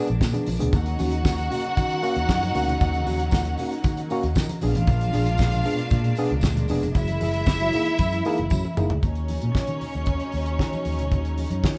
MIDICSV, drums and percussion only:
0, 0, Header, 1, 2, 480
1, 0, Start_track
1, 0, Tempo, 519481
1, 674, Time_signature, 4, 2, 24, 8
1, 10886, End_track
2, 0, Start_track
2, 0, Title_t, "Drums"
2, 69, Note_on_c, 9, 42, 46
2, 162, Note_off_c, 9, 42, 0
2, 193, Note_on_c, 9, 36, 105
2, 198, Note_on_c, 9, 38, 109
2, 204, Note_on_c, 9, 62, 38
2, 208, Note_on_c, 9, 54, 101
2, 286, Note_off_c, 9, 36, 0
2, 291, Note_off_c, 9, 38, 0
2, 297, Note_off_c, 9, 62, 0
2, 301, Note_off_c, 9, 54, 0
2, 316, Note_on_c, 9, 42, 52
2, 320, Note_on_c, 9, 63, 96
2, 328, Note_on_c, 9, 54, 32
2, 408, Note_off_c, 9, 42, 0
2, 412, Note_off_c, 9, 63, 0
2, 420, Note_off_c, 9, 54, 0
2, 429, Note_on_c, 9, 46, 66
2, 443, Note_on_c, 9, 63, 82
2, 449, Note_on_c, 9, 54, 60
2, 521, Note_off_c, 9, 46, 0
2, 535, Note_off_c, 9, 63, 0
2, 542, Note_off_c, 9, 54, 0
2, 557, Note_on_c, 9, 42, 57
2, 569, Note_on_c, 9, 64, 88
2, 650, Note_off_c, 9, 42, 0
2, 661, Note_off_c, 9, 64, 0
2, 673, Note_on_c, 9, 42, 59
2, 674, Note_on_c, 9, 36, 120
2, 676, Note_on_c, 9, 64, 84
2, 685, Note_on_c, 9, 54, 50
2, 765, Note_off_c, 9, 42, 0
2, 766, Note_off_c, 9, 36, 0
2, 769, Note_off_c, 9, 64, 0
2, 777, Note_off_c, 9, 54, 0
2, 793, Note_on_c, 9, 42, 47
2, 796, Note_on_c, 9, 54, 39
2, 804, Note_on_c, 9, 62, 32
2, 804, Note_on_c, 9, 63, 51
2, 885, Note_off_c, 9, 42, 0
2, 889, Note_off_c, 9, 54, 0
2, 896, Note_off_c, 9, 62, 0
2, 896, Note_off_c, 9, 63, 0
2, 914, Note_on_c, 9, 46, 75
2, 921, Note_on_c, 9, 63, 86
2, 922, Note_on_c, 9, 54, 67
2, 1006, Note_off_c, 9, 46, 0
2, 1013, Note_off_c, 9, 63, 0
2, 1015, Note_off_c, 9, 54, 0
2, 1031, Note_on_c, 9, 42, 55
2, 1124, Note_off_c, 9, 42, 0
2, 1155, Note_on_c, 9, 36, 113
2, 1155, Note_on_c, 9, 54, 114
2, 1160, Note_on_c, 9, 38, 123
2, 1166, Note_on_c, 9, 62, 41
2, 1247, Note_off_c, 9, 36, 0
2, 1247, Note_off_c, 9, 54, 0
2, 1253, Note_off_c, 9, 38, 0
2, 1258, Note_off_c, 9, 62, 0
2, 1277, Note_on_c, 9, 42, 51
2, 1285, Note_on_c, 9, 62, 41
2, 1369, Note_off_c, 9, 42, 0
2, 1378, Note_off_c, 9, 62, 0
2, 1400, Note_on_c, 9, 46, 65
2, 1401, Note_on_c, 9, 54, 53
2, 1401, Note_on_c, 9, 64, 77
2, 1492, Note_off_c, 9, 46, 0
2, 1493, Note_off_c, 9, 54, 0
2, 1493, Note_off_c, 9, 64, 0
2, 1519, Note_on_c, 9, 42, 48
2, 1612, Note_off_c, 9, 42, 0
2, 1636, Note_on_c, 9, 42, 68
2, 1638, Note_on_c, 9, 36, 109
2, 1640, Note_on_c, 9, 54, 65
2, 1645, Note_on_c, 9, 62, 34
2, 1728, Note_off_c, 9, 42, 0
2, 1730, Note_off_c, 9, 36, 0
2, 1732, Note_off_c, 9, 54, 0
2, 1737, Note_off_c, 9, 62, 0
2, 1758, Note_on_c, 9, 42, 43
2, 1850, Note_off_c, 9, 42, 0
2, 1875, Note_on_c, 9, 46, 54
2, 1880, Note_on_c, 9, 54, 62
2, 1968, Note_off_c, 9, 46, 0
2, 1972, Note_off_c, 9, 54, 0
2, 1991, Note_on_c, 9, 42, 41
2, 2084, Note_off_c, 9, 42, 0
2, 2115, Note_on_c, 9, 36, 107
2, 2116, Note_on_c, 9, 54, 100
2, 2120, Note_on_c, 9, 38, 114
2, 2207, Note_off_c, 9, 36, 0
2, 2208, Note_off_c, 9, 54, 0
2, 2212, Note_off_c, 9, 38, 0
2, 2237, Note_on_c, 9, 62, 45
2, 2237, Note_on_c, 9, 63, 89
2, 2239, Note_on_c, 9, 54, 37
2, 2243, Note_on_c, 9, 42, 52
2, 2330, Note_off_c, 9, 62, 0
2, 2330, Note_off_c, 9, 63, 0
2, 2331, Note_off_c, 9, 54, 0
2, 2336, Note_off_c, 9, 42, 0
2, 2355, Note_on_c, 9, 46, 65
2, 2357, Note_on_c, 9, 63, 78
2, 2364, Note_on_c, 9, 54, 57
2, 2448, Note_off_c, 9, 46, 0
2, 2450, Note_off_c, 9, 63, 0
2, 2456, Note_off_c, 9, 54, 0
2, 2478, Note_on_c, 9, 64, 79
2, 2487, Note_on_c, 9, 42, 60
2, 2570, Note_off_c, 9, 64, 0
2, 2580, Note_off_c, 9, 42, 0
2, 2586, Note_on_c, 9, 64, 90
2, 2597, Note_on_c, 9, 36, 124
2, 2601, Note_on_c, 9, 42, 62
2, 2602, Note_on_c, 9, 54, 53
2, 2678, Note_off_c, 9, 64, 0
2, 2690, Note_off_c, 9, 36, 0
2, 2694, Note_off_c, 9, 42, 0
2, 2694, Note_off_c, 9, 54, 0
2, 2708, Note_on_c, 9, 54, 38
2, 2715, Note_on_c, 9, 63, 50
2, 2719, Note_on_c, 9, 42, 46
2, 2801, Note_off_c, 9, 54, 0
2, 2807, Note_off_c, 9, 63, 0
2, 2811, Note_off_c, 9, 42, 0
2, 2834, Note_on_c, 9, 54, 66
2, 2834, Note_on_c, 9, 63, 90
2, 2836, Note_on_c, 9, 46, 69
2, 2926, Note_off_c, 9, 54, 0
2, 2926, Note_off_c, 9, 63, 0
2, 2928, Note_off_c, 9, 46, 0
2, 2954, Note_on_c, 9, 42, 57
2, 3046, Note_off_c, 9, 42, 0
2, 3060, Note_on_c, 9, 54, 109
2, 3071, Note_on_c, 9, 36, 125
2, 3079, Note_on_c, 9, 38, 117
2, 3152, Note_off_c, 9, 54, 0
2, 3163, Note_off_c, 9, 36, 0
2, 3172, Note_off_c, 9, 38, 0
2, 3190, Note_on_c, 9, 42, 54
2, 3283, Note_off_c, 9, 42, 0
2, 3305, Note_on_c, 9, 54, 50
2, 3308, Note_on_c, 9, 64, 66
2, 3315, Note_on_c, 9, 46, 69
2, 3397, Note_off_c, 9, 54, 0
2, 3400, Note_off_c, 9, 64, 0
2, 3407, Note_off_c, 9, 46, 0
2, 3421, Note_on_c, 9, 54, 36
2, 3436, Note_on_c, 9, 42, 43
2, 3513, Note_off_c, 9, 54, 0
2, 3528, Note_off_c, 9, 42, 0
2, 3545, Note_on_c, 9, 54, 64
2, 3547, Note_on_c, 9, 42, 78
2, 3551, Note_on_c, 9, 36, 108
2, 3637, Note_off_c, 9, 54, 0
2, 3640, Note_off_c, 9, 42, 0
2, 3643, Note_off_c, 9, 36, 0
2, 3672, Note_on_c, 9, 42, 46
2, 3672, Note_on_c, 9, 62, 33
2, 3764, Note_off_c, 9, 42, 0
2, 3764, Note_off_c, 9, 62, 0
2, 3789, Note_on_c, 9, 54, 60
2, 3790, Note_on_c, 9, 46, 45
2, 3881, Note_off_c, 9, 54, 0
2, 3883, Note_off_c, 9, 46, 0
2, 3910, Note_on_c, 9, 42, 45
2, 4003, Note_off_c, 9, 42, 0
2, 4022, Note_on_c, 9, 54, 101
2, 4028, Note_on_c, 9, 36, 104
2, 4031, Note_on_c, 9, 62, 35
2, 4036, Note_on_c, 9, 38, 102
2, 4115, Note_off_c, 9, 54, 0
2, 4120, Note_off_c, 9, 36, 0
2, 4124, Note_off_c, 9, 62, 0
2, 4129, Note_off_c, 9, 38, 0
2, 4151, Note_on_c, 9, 62, 45
2, 4151, Note_on_c, 9, 63, 87
2, 4152, Note_on_c, 9, 42, 55
2, 4243, Note_off_c, 9, 62, 0
2, 4243, Note_off_c, 9, 63, 0
2, 4244, Note_off_c, 9, 42, 0
2, 4263, Note_on_c, 9, 54, 58
2, 4266, Note_on_c, 9, 46, 64
2, 4267, Note_on_c, 9, 63, 86
2, 4355, Note_off_c, 9, 54, 0
2, 4359, Note_off_c, 9, 46, 0
2, 4360, Note_off_c, 9, 63, 0
2, 4389, Note_on_c, 9, 42, 59
2, 4395, Note_on_c, 9, 64, 89
2, 4482, Note_off_c, 9, 42, 0
2, 4487, Note_off_c, 9, 64, 0
2, 4499, Note_on_c, 9, 54, 54
2, 4502, Note_on_c, 9, 42, 58
2, 4504, Note_on_c, 9, 36, 127
2, 4507, Note_on_c, 9, 64, 85
2, 4591, Note_off_c, 9, 54, 0
2, 4594, Note_off_c, 9, 42, 0
2, 4597, Note_off_c, 9, 36, 0
2, 4600, Note_off_c, 9, 64, 0
2, 4628, Note_on_c, 9, 42, 47
2, 4631, Note_on_c, 9, 62, 32
2, 4631, Note_on_c, 9, 63, 52
2, 4720, Note_off_c, 9, 42, 0
2, 4724, Note_off_c, 9, 62, 0
2, 4724, Note_off_c, 9, 63, 0
2, 4737, Note_on_c, 9, 54, 66
2, 4746, Note_on_c, 9, 46, 81
2, 4748, Note_on_c, 9, 63, 90
2, 4830, Note_off_c, 9, 54, 0
2, 4838, Note_off_c, 9, 46, 0
2, 4840, Note_off_c, 9, 63, 0
2, 4852, Note_on_c, 9, 54, 38
2, 4865, Note_on_c, 9, 42, 60
2, 4944, Note_off_c, 9, 54, 0
2, 4957, Note_off_c, 9, 42, 0
2, 4970, Note_on_c, 9, 54, 113
2, 4982, Note_on_c, 9, 36, 113
2, 4992, Note_on_c, 9, 38, 113
2, 5062, Note_off_c, 9, 54, 0
2, 5075, Note_off_c, 9, 36, 0
2, 5085, Note_off_c, 9, 38, 0
2, 5100, Note_on_c, 9, 42, 54
2, 5109, Note_on_c, 9, 62, 42
2, 5192, Note_off_c, 9, 42, 0
2, 5201, Note_off_c, 9, 62, 0
2, 5203, Note_on_c, 9, 54, 55
2, 5226, Note_on_c, 9, 64, 63
2, 5227, Note_on_c, 9, 46, 64
2, 5295, Note_off_c, 9, 54, 0
2, 5319, Note_off_c, 9, 46, 0
2, 5319, Note_off_c, 9, 64, 0
2, 5329, Note_on_c, 9, 54, 39
2, 5346, Note_on_c, 9, 42, 42
2, 5422, Note_off_c, 9, 54, 0
2, 5438, Note_off_c, 9, 42, 0
2, 5443, Note_on_c, 9, 54, 61
2, 5460, Note_on_c, 9, 42, 71
2, 5463, Note_on_c, 9, 36, 124
2, 5466, Note_on_c, 9, 62, 35
2, 5536, Note_off_c, 9, 54, 0
2, 5552, Note_off_c, 9, 42, 0
2, 5555, Note_off_c, 9, 36, 0
2, 5559, Note_off_c, 9, 62, 0
2, 5583, Note_on_c, 9, 42, 44
2, 5675, Note_off_c, 9, 42, 0
2, 5687, Note_on_c, 9, 54, 64
2, 5699, Note_on_c, 9, 46, 56
2, 5780, Note_off_c, 9, 54, 0
2, 5791, Note_off_c, 9, 46, 0
2, 5821, Note_on_c, 9, 42, 44
2, 5913, Note_off_c, 9, 42, 0
2, 5925, Note_on_c, 9, 54, 99
2, 5941, Note_on_c, 9, 36, 112
2, 5942, Note_on_c, 9, 62, 39
2, 5948, Note_on_c, 9, 38, 121
2, 6017, Note_off_c, 9, 54, 0
2, 6034, Note_off_c, 9, 36, 0
2, 6034, Note_off_c, 9, 62, 0
2, 6041, Note_off_c, 9, 38, 0
2, 6063, Note_on_c, 9, 63, 93
2, 6069, Note_on_c, 9, 42, 56
2, 6155, Note_off_c, 9, 63, 0
2, 6161, Note_off_c, 9, 42, 0
2, 6171, Note_on_c, 9, 54, 59
2, 6180, Note_on_c, 9, 46, 66
2, 6187, Note_on_c, 9, 63, 91
2, 6263, Note_off_c, 9, 54, 0
2, 6273, Note_off_c, 9, 46, 0
2, 6279, Note_off_c, 9, 63, 0
2, 6311, Note_on_c, 9, 42, 58
2, 6311, Note_on_c, 9, 64, 81
2, 6404, Note_off_c, 9, 42, 0
2, 6404, Note_off_c, 9, 64, 0
2, 6418, Note_on_c, 9, 54, 51
2, 6420, Note_on_c, 9, 42, 60
2, 6421, Note_on_c, 9, 64, 84
2, 6422, Note_on_c, 9, 36, 123
2, 6510, Note_off_c, 9, 54, 0
2, 6513, Note_off_c, 9, 42, 0
2, 6513, Note_off_c, 9, 64, 0
2, 6515, Note_off_c, 9, 36, 0
2, 6536, Note_on_c, 9, 54, 39
2, 6540, Note_on_c, 9, 42, 48
2, 6545, Note_on_c, 9, 63, 47
2, 6629, Note_off_c, 9, 54, 0
2, 6632, Note_off_c, 9, 42, 0
2, 6638, Note_off_c, 9, 63, 0
2, 6657, Note_on_c, 9, 63, 90
2, 6659, Note_on_c, 9, 46, 74
2, 6662, Note_on_c, 9, 54, 59
2, 6750, Note_off_c, 9, 63, 0
2, 6751, Note_off_c, 9, 46, 0
2, 6755, Note_off_c, 9, 54, 0
2, 6771, Note_on_c, 9, 54, 45
2, 6778, Note_on_c, 9, 42, 54
2, 6864, Note_off_c, 9, 54, 0
2, 6871, Note_off_c, 9, 42, 0
2, 6894, Note_on_c, 9, 54, 105
2, 6901, Note_on_c, 9, 36, 114
2, 6908, Note_on_c, 9, 38, 120
2, 6987, Note_off_c, 9, 54, 0
2, 6993, Note_off_c, 9, 36, 0
2, 7000, Note_off_c, 9, 38, 0
2, 7021, Note_on_c, 9, 42, 55
2, 7025, Note_on_c, 9, 62, 41
2, 7114, Note_off_c, 9, 42, 0
2, 7118, Note_off_c, 9, 62, 0
2, 7135, Note_on_c, 9, 54, 57
2, 7141, Note_on_c, 9, 46, 64
2, 7147, Note_on_c, 9, 64, 77
2, 7227, Note_off_c, 9, 54, 0
2, 7234, Note_off_c, 9, 46, 0
2, 7239, Note_off_c, 9, 64, 0
2, 7267, Note_on_c, 9, 42, 46
2, 7359, Note_off_c, 9, 42, 0
2, 7377, Note_on_c, 9, 54, 64
2, 7378, Note_on_c, 9, 42, 80
2, 7384, Note_on_c, 9, 36, 104
2, 7469, Note_off_c, 9, 54, 0
2, 7471, Note_off_c, 9, 42, 0
2, 7476, Note_off_c, 9, 36, 0
2, 7507, Note_on_c, 9, 42, 45
2, 7510, Note_on_c, 9, 62, 36
2, 7600, Note_off_c, 9, 42, 0
2, 7602, Note_off_c, 9, 62, 0
2, 7622, Note_on_c, 9, 46, 50
2, 7625, Note_on_c, 9, 54, 60
2, 7714, Note_off_c, 9, 46, 0
2, 7717, Note_off_c, 9, 54, 0
2, 7741, Note_on_c, 9, 42, 46
2, 7834, Note_off_c, 9, 42, 0
2, 7855, Note_on_c, 9, 54, 104
2, 7864, Note_on_c, 9, 36, 104
2, 7866, Note_on_c, 9, 48, 68
2, 7947, Note_off_c, 9, 54, 0
2, 7957, Note_off_c, 9, 36, 0
2, 7958, Note_off_c, 9, 48, 0
2, 7985, Note_on_c, 9, 54, 32
2, 7993, Note_on_c, 9, 62, 39
2, 7993, Note_on_c, 9, 63, 90
2, 8077, Note_off_c, 9, 54, 0
2, 8085, Note_off_c, 9, 62, 0
2, 8085, Note_off_c, 9, 63, 0
2, 8106, Note_on_c, 9, 45, 101
2, 8106, Note_on_c, 9, 54, 53
2, 8112, Note_on_c, 9, 63, 79
2, 8198, Note_off_c, 9, 45, 0
2, 8199, Note_off_c, 9, 54, 0
2, 8205, Note_off_c, 9, 63, 0
2, 8223, Note_on_c, 9, 43, 100
2, 8234, Note_on_c, 9, 64, 83
2, 8316, Note_off_c, 9, 43, 0
2, 8326, Note_off_c, 9, 64, 0
2, 8341, Note_on_c, 9, 42, 50
2, 8343, Note_on_c, 9, 36, 105
2, 8347, Note_on_c, 9, 62, 32
2, 8347, Note_on_c, 9, 64, 74
2, 8434, Note_off_c, 9, 42, 0
2, 8435, Note_off_c, 9, 36, 0
2, 8440, Note_off_c, 9, 62, 0
2, 8440, Note_off_c, 9, 64, 0
2, 8458, Note_on_c, 9, 42, 39
2, 8472, Note_on_c, 9, 62, 26
2, 8551, Note_off_c, 9, 42, 0
2, 8565, Note_off_c, 9, 62, 0
2, 8577, Note_on_c, 9, 46, 62
2, 8590, Note_on_c, 9, 63, 81
2, 8670, Note_off_c, 9, 46, 0
2, 8682, Note_off_c, 9, 63, 0
2, 8700, Note_on_c, 9, 42, 50
2, 8792, Note_off_c, 9, 42, 0
2, 8822, Note_on_c, 9, 36, 104
2, 8828, Note_on_c, 9, 38, 91
2, 8834, Note_on_c, 9, 62, 37
2, 8915, Note_off_c, 9, 36, 0
2, 8920, Note_off_c, 9, 38, 0
2, 8926, Note_off_c, 9, 62, 0
2, 8937, Note_on_c, 9, 42, 50
2, 9029, Note_off_c, 9, 42, 0
2, 9064, Note_on_c, 9, 46, 51
2, 9069, Note_on_c, 9, 64, 66
2, 9156, Note_off_c, 9, 46, 0
2, 9161, Note_off_c, 9, 64, 0
2, 9184, Note_on_c, 9, 42, 37
2, 9276, Note_off_c, 9, 42, 0
2, 9293, Note_on_c, 9, 42, 57
2, 9304, Note_on_c, 9, 36, 99
2, 9386, Note_off_c, 9, 42, 0
2, 9396, Note_off_c, 9, 36, 0
2, 9423, Note_on_c, 9, 42, 38
2, 9516, Note_off_c, 9, 42, 0
2, 9536, Note_on_c, 9, 46, 47
2, 9629, Note_off_c, 9, 46, 0
2, 9664, Note_on_c, 9, 42, 38
2, 9756, Note_off_c, 9, 42, 0
2, 9788, Note_on_c, 9, 36, 91
2, 9795, Note_on_c, 9, 38, 86
2, 9880, Note_off_c, 9, 36, 0
2, 9887, Note_off_c, 9, 38, 0
2, 9913, Note_on_c, 9, 42, 41
2, 9922, Note_on_c, 9, 62, 38
2, 9922, Note_on_c, 9, 63, 83
2, 10005, Note_off_c, 9, 42, 0
2, 10014, Note_off_c, 9, 62, 0
2, 10014, Note_off_c, 9, 63, 0
2, 10026, Note_on_c, 9, 46, 51
2, 10035, Note_on_c, 9, 63, 78
2, 10118, Note_off_c, 9, 46, 0
2, 10127, Note_off_c, 9, 63, 0
2, 10153, Note_on_c, 9, 42, 44
2, 10165, Note_on_c, 9, 64, 66
2, 10245, Note_off_c, 9, 42, 0
2, 10257, Note_off_c, 9, 64, 0
2, 10271, Note_on_c, 9, 36, 98
2, 10271, Note_on_c, 9, 42, 48
2, 10274, Note_on_c, 9, 62, 34
2, 10274, Note_on_c, 9, 64, 77
2, 10363, Note_off_c, 9, 42, 0
2, 10364, Note_off_c, 9, 36, 0
2, 10366, Note_off_c, 9, 62, 0
2, 10366, Note_off_c, 9, 64, 0
2, 10394, Note_on_c, 9, 42, 38
2, 10397, Note_on_c, 9, 62, 28
2, 10486, Note_off_c, 9, 42, 0
2, 10490, Note_off_c, 9, 62, 0
2, 10511, Note_on_c, 9, 46, 61
2, 10516, Note_on_c, 9, 63, 75
2, 10604, Note_off_c, 9, 46, 0
2, 10608, Note_off_c, 9, 63, 0
2, 10631, Note_on_c, 9, 42, 49
2, 10724, Note_off_c, 9, 42, 0
2, 10752, Note_on_c, 9, 36, 111
2, 10760, Note_on_c, 9, 38, 105
2, 10845, Note_off_c, 9, 36, 0
2, 10852, Note_off_c, 9, 38, 0
2, 10886, End_track
0, 0, End_of_file